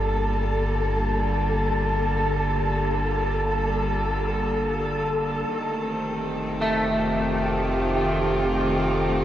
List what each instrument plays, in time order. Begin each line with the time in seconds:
Already playing: sub bass G1, string section D3 G3 A#3 F4 A4, synth texture A4 A5
5.49 sub bass F1, string section D#3, synth texture G4 G5
5.70 string section A3
5.83 string section C4
6.53 string section F4
6.62 clean electric guitar A3